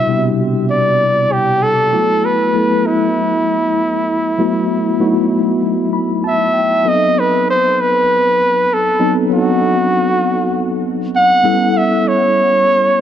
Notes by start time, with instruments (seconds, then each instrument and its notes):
Already playing: tine electric piano B2 C3 G3 D4 E4 F#4, flugelhorn E5
0.07 tine electric piano C3 G3 B3 D4 E4 G4
0.70 flugelhorn D5
1.32 flugelhorn G4
1.63 flugelhorn A4
1.92 tine electric piano F#3 A3 B3 E4 F#4
2.25 flugelhorn B4
2.54 tine electric piano F#3 A3 B3 E4 A4
2.87 flugelhorn E4
4.38 tine electric piano F#3 A3 B3 E4 F#4
4.99 tine electric piano F#3 A3 B3 D#4 F#4
5.08 tine electric piano E4
5.93 tine electric piano B5
6.24 flugelhorn E5, tine electric piano A5
6.53 tine electric piano G5
6.84 tine electric piano F#3 B3 C4 D#4 A4, flugelhorn D#5
7.19 flugelhorn B4
7.50 flugelhorn C5
7.81 flugelhorn B4
8.74 flugelhorn A4
8.99 tine electric piano F#3 B3 C4 D#4 A4
9.30 tine electric piano F#3 B3 C4 D4 A4, flugelhorn F#4
9.38 tine electric piano D#4
11.16 flugelhorn F#5
11.43 tine electric piano G3 B3 C#4 E4 A4
11.77 flugelhorn E5
12.08 flugelhorn C#5